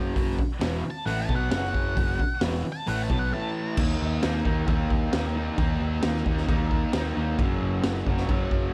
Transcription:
0.00 0.13 F#1 medium
0.00 0.14 F#2 medium
0.00 0.15 C#3 loud
0.00 0.15 F#3 loud
0.15 0.37 F#1 medium
0.15 0.37 F#2 medium
0.15 0.38 C#3 loud
0.15 0.38 F#3 loud
0.15 kick loud
0.15 open hi-hat medium
0.38 muted distorted electric guitar stroke medium
0.38 muted picked electric bass stroke soft
0.38 kick medium
0.60 0.82 E1 loud
0.60 0.83 E2 medium
0.60 0.83 B2 loud
0.60 0.84 E3 loud
0.60 snare loud
0.60 open hi-hat medium
0.84 muted distorted electric guitar stroke medium
0.84 muted picked electric bass stroke soft
0.90 1.06 A5 loud
1.06 1.27 A1 medium
1.06 1.28 A2 loud
1.06 1.28 E3 loud
1.06 1.29 A3 loud
1.06 1.21 F#5 medium
1.06 open hi-hat medium
1.22 1.35 A5 loud
1.29 1.50 B1 medium
1.29 1.51 B2 medium
1.29 1.51 F#3 medium
1.29 1.52 B3 loud
1.29 kick medium
1.36 1.50 F#5 medium
1.51 1.94 F#1 medium
1.51 1.96 F#2 medium
1.51 1.96 C#3 medium
1.51 1.97 F#3 loud
1.51 2.39 F#5 loud
1.51 snare loud
1.51 open hi-hat medium
1.74 kick medium
1.97 2.18 F#1 loud
1.97 2.19 F#2 medium
1.97 2.19 C#3 medium
1.97 2.20 F#3 loud
1.97 kick loud
1.97 open hi-hat medium
2.20 muted distorted electric guitar stroke medium
2.20 kick medium
2.41 2.63 E1 medium
2.41 2.64 E2 loud
2.41 2.64 B2 loud
2.41 2.65 E3 loud
2.41 snare loud
2.41 open hi-hat medium
2.65 muted distorted electric guitar stroke medium
2.65 muted picked electric bass stroke soft
2.72 2.87 A5 loud
2.87 3.09 A1 loud
2.87 3.09 A2 medium
2.87 3.09 E3 loud
2.87 3.10 A3 loud
2.87 3.03 F#5 medium
2.87 open hi-hat medium
3.04 3.19 A5 medium
3.10 3.31 B1 loud
3.10 3.32 B2 medium
3.10 3.32 F#3 loud
3.10 3.33 B3 loud
3.10 kick medium
3.19 3.33 F#5 loud
3.33 3.76 A2 medium
3.33 3.78 E3 loud
3.33 3.78 A3 medium
3.33 3.77 A5 loud
3.77 3.95 D#2 loud
3.77 4.21 D#3 loud
3.77 4.22 A#3 loud
3.77 4.23 D#4 loud
3.77 kick loud
3.77 crash loud
3.77 crash medium
4.01 4.18 D#2 medium
4.22 4.41 D#2 medium
4.22 4.44 D#3 medium
4.22 4.45 A#3 medium
4.22 4.45 D#4 loud
4.22 snare loud
4.22 crash medium
4.45 4.63 D#2 medium
4.45 4.66 D#3 medium
4.45 4.67 A#3 medium
4.45 4.67 D#4 loud
4.45 kick medium
4.67 4.86 D#2 loud
4.67 5.10 D#3 loud
4.67 5.12 A#3 loud
4.67 5.12 D#4 loud
4.67 kick loud
4.67 crash medium
4.90 5.08 D#2 medium
4.90 kick medium
5.12 5.48 D#2 loud
5.12 5.34 D#3 medium
5.12 5.35 A#3 medium
5.12 5.35 D#4 loud
5.12 snare loud
5.12 crash medium
5.35 5.56 D#3 medium
5.35 5.58 A#3 medium
5.35 5.58 D#4 loud
5.57 5.76 D#2 loud
5.57 6.02 D#3 loud
5.57 6.04 A#3 loud
5.57 6.03 D#4 loud
5.57 kick loud
5.57 crash medium
5.81 5.98 D#2 medium
6.03 6.21 D#2 medium
6.03 6.25 D#3 medium
6.03 6.26 A#3 medium
6.03 6.26 D#4 medium
6.03 snare loud
6.03 crash medium
6.14 snare soft
6.26 6.44 D#2 medium
6.26 6.46 D#3 medium
6.26 6.48 A#3 medium
6.26 6.47 D#4 medium
6.26 kick medium
6.37 snare soft
6.47 6.84 D#2 loud
6.47 6.92 D#3 loud
6.47 6.93 A#3 loud
6.47 6.93 D#4 loud
6.47 kick loud
6.47 crash medium
6.71 kick medium
6.93 7.11 D#2 loud
6.93 7.15 D#3 medium
6.93 7.16 A#3 medium
6.93 7.16 D#4 loud
6.93 snare loud
6.93 crash medium
7.16 7.34 D#2 loud
7.16 7.37 D#3 medium
7.16 7.39 A#3 loud
7.16 7.38 D#4 medium
7.39 7.56 F#1 loud
7.39 7.83 F#2 loud
7.39 7.83 C#3 loud
7.39 7.84 F#3 loud
7.39 kick loud
7.39 crash medium
7.62 7.79 F#1 medium
7.83 8.01 F#1 loud
7.83 8.05 F#2 medium
7.83 8.06 C#3 medium
7.83 8.07 F#3 loud
7.83 snare loud
7.83 crash medium
8.06 8.24 F#1 medium
8.06 8.27 F#2 medium
8.06 8.28 C#3 medium
8.06 8.29 F#3 loud
8.06 kick medium
8.17 snare soft
8.28 8.46 F#1 loud
8.28 8.73 F#2 loud
8.28 8.73 C#3 loud
8.28 8.74 F#3 loud
8.28 kick loud
8.28 crash medium
8.51 8.69 F#1 medium
8.51 kick medium

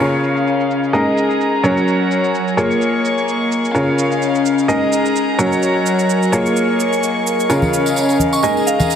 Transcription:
0.00 0.91 C#3 medium
0.00 0.92 C#4 medium
0.00 0.91 F4 medium
0.00 0.91 G#4 medium
0.00 0.91 A#4 medium
0.00 0.92 A#4 medium
0.00 0.91 C#5 medium
0.00 0.92 F5 medium
0.00 cabasa soft
0.24 cabasa medium
0.37 cabasa soft
0.42 8.96 A#4 medium
0.42 8.96 D#5 medium
0.42 8.96 G#5 medium
0.47 cabasa soft
0.60 cabasa soft
0.71 cabasa medium
0.84 cabasa soft
0.93 1.61 G#3 medium
0.93 1.61 D#4 medium
0.93 1.61 G#4 medium
0.93 1.63 G#4 medium
0.93 1.61 A#4 medium
0.93 1.61 D#5 medium
0.93 1.63 D#5 medium
0.93 2.56 A#5 medium
0.93 cabasa soft
1.18 cabasa medium
1.31 cabasa soft
1.41 cabasa soft
1.63 2.55 F#3 medium
1.63 2.55 C#4 medium
1.63 2.55 F#4 medium
1.63 2.56 F#4 medium
1.63 2.55 A#4 medium
1.63 2.55 C#5 medium
1.63 2.56 C#5 medium
1.63 cabasa medium
1.77 cabasa soft
1.88 cabasa soft
2.11 cabasa medium
2.24 cabasa soft
2.35 cabasa soft
2.48 cabasa soft
2.57 3.73 A#3 medium
2.57 3.72 A#3 medium
2.57 3.72 F4 medium
2.57 3.73 G#4 medium
2.57 3.72 G#4 medium
2.57 3.72 A#4 medium
2.57 3.72 C#5 medium
2.57 3.73 C#6 medium
2.57 cabasa medium
2.71 cabasa soft
2.82 cabasa soft
3.05 cabasa medium
3.18 cabasa soft
3.28 cabasa soft
3.52 cabasa medium
3.65 cabasa soft
3.74 4.66 C#3 medium
3.74 4.67 C#4 medium
3.74 4.66 F4 medium
3.74 4.66 G#4 medium
3.74 4.66 A#4 medium
3.74 4.67 A#4 medium
3.74 4.66 C#5 medium
3.74 4.67 F5 medium
3.74 cabasa soft
3.99 cabasa medium
4.12 cabasa soft
4.22 cabasa soft
4.35 cabasa soft
4.46 cabasa medium
4.59 cabasa soft
4.68 5.36 G#3 medium
4.68 5.36 D#4 medium
4.68 5.36 G#4 medium
4.68 5.38 G#4 medium
4.68 5.36 A#4 medium
4.68 5.36 D#5 medium
4.68 5.38 D#5 medium
4.68 6.31 A#5 medium
4.68 cabasa soft
4.92 cabasa medium
5.06 cabasa soft
5.16 cabasa soft
5.38 6.30 F#3 medium
5.38 6.30 C#4 medium
5.38 6.31 F#4 medium
5.38 6.30 F#4 medium
5.38 6.30 A#4 medium
5.38 6.31 C#5 medium
5.38 6.30 C#5 medium
5.38 cabasa medium
5.52 cabasa soft
5.63 cabasa soft
5.86 cabasa medium
5.99 cabasa soft
6.10 cabasa soft
6.23 cabasa soft
6.32 7.48 A#3 medium
6.32 7.47 A#3 medium
6.32 7.47 F4 medium
6.32 7.48 G#4 medium
6.32 7.47 G#4 medium
6.32 7.47 A#4 medium
6.32 7.47 C#5 medium
6.32 7.48 C#6 medium
6.32 cabasa medium
6.46 cabasa soft
6.56 cabasa soft
6.80 cabasa medium
6.93 cabasa soft
7.03 cabasa soft
7.27 cabasa medium
7.40 cabasa soft
7.50 8.41 C#3 medium
7.50 8.42 C#4 medium
7.50 8.41 F4 medium
7.50 8.41 G#4 medium
7.50 8.42 A#4 medium
7.50 8.41 A#4 medium
7.50 8.41 C#5 medium
7.50 8.42 F5 medium
7.50 tambourine medium
7.50 cabasa soft
7.62 tambourine soft
7.62 high conga medium
7.74 cabasa medium
7.86 tambourine medium
7.86 cabasa soft
7.96 tambourine medium
7.96 cabasa soft
8.09 tambourine soft
8.09 cabasa soft
8.19 high conga medium
8.19 cabasa medium
8.33 8.41 C#6 medium
8.33 tambourine medium
8.33 cabasa soft
8.43 8.96 G#3 medium
8.43 8.96 D#4 medium
8.43 8.96 G#4 medium
8.43 8.96 A#4 medium
8.43 8.96 D#5 medium
8.43 8.63 G#5 medium
8.43 8.96 A#5 medium
8.43 tambourine medium
8.43 cabasa soft
8.57 tambourine soft
8.67 8.96 F5 medium
8.67 cabasa medium
8.79 tambourine medium
8.79 high conga medium
8.79 cabasa soft
8.90 tambourine medium
8.90 cabasa soft

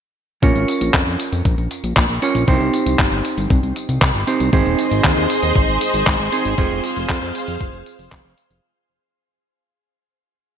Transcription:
0.42 0.53 A#1 loud
0.42 2.19 C#4 medium
0.42 2.19 F4 medium
0.42 2.19 A#4 medium
0.42 2.19 C#5 loud
0.42 kick loud
0.42 closed hi-hat medium
0.42 tambourine soft
0.56 0.65 G#1 medium
0.56 closed hi-hat soft
0.68 closed hi-hat medium
0.68 tambourine medium
0.81 0.91 A#1 medium
0.81 closed hi-hat medium
0.81 tambourine soft
0.94 1.04 F2 loud
0.94 kick loud
0.94 clap loud
0.94 closed hi-hat medium
0.94 tambourine soft
1.07 1.17 F2 medium
1.07 closed hi-hat soft
1.20 closed hi-hat medium
1.20 tambourine medium
1.32 1.42 F2 medium
1.32 closed hi-hat soft
1.32 tambourine soft
1.45 1.55 A#1 loud
1.45 kick loud
1.45 closed hi-hat medium
1.45 tambourine soft
1.58 1.68 A#1 medium
1.58 closed hi-hat soft
1.71 closed hi-hat medium
1.71 tambourine medium
1.84 1.94 A#1 medium
1.84 closed hi-hat medium
1.84 tambourine soft
1.97 2.07 A#1 loud
1.97 kick loud
1.97 clap loud
1.97 closed hi-hat medium
1.97 tambourine soft
2.09 2.19 A#1 medium
2.09 closed hi-hat soft
2.22 2.45 C#4 medium
2.22 2.45 F4 medium
2.22 2.45 A#4 medium
2.22 2.45 C#5 medium
2.22 closed hi-hat medium
2.22 tambourine medium
2.35 2.45 A#1 medium
2.35 closed hi-hat medium
2.35 tambourine soft
2.47 2.58 C2 loud
2.47 4.24 C4 medium
2.47 4.24 D#4 medium
2.47 4.24 G4 medium
2.47 4.24 C5 loud
2.47 kick loud
2.47 closed hi-hat medium
2.47 tambourine soft
2.61 2.71 C2 medium
2.61 closed hi-hat soft
2.74 closed hi-hat medium
2.74 tambourine medium
2.86 2.96 C2 medium
2.86 closed hi-hat medium
2.86 tambourine soft
2.99 3.09 G1 loud
2.99 kick loud
2.99 clap loud
2.99 closed hi-hat medium
3.12 3.22 G1 medium
3.12 closed hi-hat soft
3.25 closed hi-hat medium
3.25 tambourine medium
3.38 3.48 G1 medium
3.38 closed hi-hat soft
3.38 tambourine soft
3.50 3.60 C2 loud
3.50 kick loud
3.50 closed hi-hat medium
3.50 tambourine soft
3.63 3.73 C2 medium
3.63 closed hi-hat soft
3.76 closed hi-hat medium
3.76 tambourine medium
3.89 3.99 C2 medium
3.89 closed hi-hat medium
3.89 tambourine soft
4.02 4.12 C2 loud
4.02 kick loud
4.02 clap loud
4.02 closed hi-hat medium
4.14 4.24 G1 medium
4.14 closed hi-hat soft
4.27 4.50 C4 medium
4.27 4.50 D#4 medium
4.27 4.50 G4 medium
4.27 4.50 C5 medium
4.27 closed hi-hat medium
4.27 tambourine medium
4.40 4.50 C2 medium
4.40 closed hi-hat medium
4.40 tambourine soft
4.53 4.63 G#1 loud
4.53 6.29 C4 medium
4.53 6.29 D#4 medium
4.53 8.59 G#4 medium
4.53 6.29 G#4 medium
4.53 6.56 C5 medium
4.53 6.29 C5 loud
4.53 6.56 D#5 medium
4.53 8.59 C6 medium
4.53 kick loud
4.53 closed hi-hat medium
4.53 tambourine soft
4.66 4.76 D#1 medium
4.66 closed hi-hat soft
4.79 closed hi-hat medium
4.79 tambourine medium
4.91 5.01 G#1 medium
4.91 closed hi-hat medium
4.91 tambourine soft
5.04 5.14 D#2 medium
5.04 kick loud
5.04 clap loud
5.04 closed hi-hat medium
5.17 5.27 D#2 medium
5.17 closed hi-hat soft
5.30 closed hi-hat medium
5.30 tambourine medium
5.43 5.53 D#2 medium
5.43 closed hi-hat soft
5.43 tambourine soft
5.56 5.66 G#1 loud
5.56 kick loud
5.56 closed hi-hat medium
5.56 tambourine soft
5.68 5.78 G#1 medium
5.68 closed hi-hat soft
5.81 closed hi-hat medium
5.81 tambourine medium
5.94 6.04 G#1 medium
5.94 closed hi-hat soft
5.94 tambourine soft
6.07 6.17 G#1 loud
6.07 kick loud
6.07 clap loud
6.07 closed hi-hat medium
6.20 6.30 G#1 medium
6.20 closed hi-hat soft
6.32 6.55 C4 medium
6.32 6.55 D#4 medium
6.32 6.55 G#4 medium
6.32 6.55 C5 medium
6.32 closed hi-hat medium
6.32 tambourine medium
6.45 6.55 G#1 medium
6.45 closed hi-hat medium
6.45 tambourine soft
6.58 6.68 F1 loud
6.58 8.34 C4 medium
6.58 8.34 F4 medium
6.58 8.34 G#4 medium
6.58 8.61 C5 medium
6.58 8.34 C5 loud
6.58 8.61 F5 medium
6.58 kick loud
6.58 closed hi-hat soft
6.58 tambourine soft
6.71 6.81 F1 medium
6.71 closed hi-hat soft
6.84 closed hi-hat medium
6.84 tambourine medium
6.97 7.07 F1 medium
6.97 closed hi-hat soft
6.97 tambourine soft
7.09 7.19 F2 medium
7.09 kick loud
7.09 clap loud
7.09 closed hi-hat soft
7.09 tambourine soft
7.22 7.32 F2 medium
7.22 closed hi-hat soft
7.35 closed hi-hat medium
7.35 tambourine medium
7.48 7.58 F2 medium
7.48 closed hi-hat soft
7.48 tambourine soft
7.61 7.71 F1 loud
7.61 kick loud
7.61 closed hi-hat soft
7.61 tambourine soft
7.73 7.83 F1 medium
7.73 closed hi-hat soft
7.86 closed hi-hat medium
7.86 tambourine medium
7.99 8.09 F1 medium
7.99 closed hi-hat soft
7.99 tambourine soft
8.12 8.22 F1 loud
8.12 kick loud
8.12 clap loud
8.12 closed hi-hat medium
8.25 8.35 F1 medium
8.25 closed hi-hat soft
8.38 closed hi-hat medium
8.38 tambourine medium
8.50 8.60 F1 medium
8.50 closed hi-hat soft
8.50 tambourine soft

